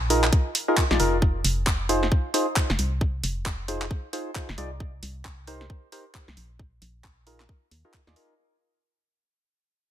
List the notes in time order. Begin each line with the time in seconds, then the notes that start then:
Already playing: A#1
0.10 D#4 F4 G#4 A#4, open hi-hat
0.24 clap
0.33 kick, closed hi-hat
0.55 open hi-hat
0.68 D#4 F4 G#4 A#4
0.77 kick, clap, closed hi-hat
0.91 A#1 D#4 F4 G#4 D5, snare
1.00 F1 D#4 F4 G#4 A#4, open hi-hat
1.22 kick
1.44 F1, open hi-hat
1.67 kick, clap
1.89 D#4 F4 G#4 C5, open hi-hat
2.03 snare
2.12 kick
2.34 D#4 F4 G#4 C5, open hi-hat
2.56 kick, clap
2.70 F1, snare
2.79 C2, open hi-hat
3.01 kick
3.24 F1, open hi-hat
3.46 kick, clap
3.68 D#4 F4 G#4 C5, open hi-hat
3.82 clap
3.91 kick
4.13 D#4 F4 G#4 C5, open hi-hat
4.35 D#4 F4 G#4 C5, kick, clap
4.49 F1, snare
4.58 C2 D#4 F4 G#4 D5, open hi-hat
4.80 kick
5.03 C2, open hi-hat
5.25 kick, clap
5.47 D#4 G4 A#4 C5, open hi-hat
5.61 snare
5.70 kick
5.92 D#4 G4 A#4 C5, open hi-hat
6.15 kick, clap
6.28 C2, snare
6.37 A#1, open hi-hat
6.59 kick
6.82 A#1, open hi-hat
7.04 kick, clap
7.27 D#4 F4 G#4 A#4, open hi-hat
7.40 clap, snare
7.49 kick
7.71 D#2, open hi-hat
7.85 D#4 F4 G#4 A#4
7.94 kick, clap
8.07 D#2 D#4 F4 G#4 D5, snare
8.16 D#4 F4 G#4 A#4, open hi-hat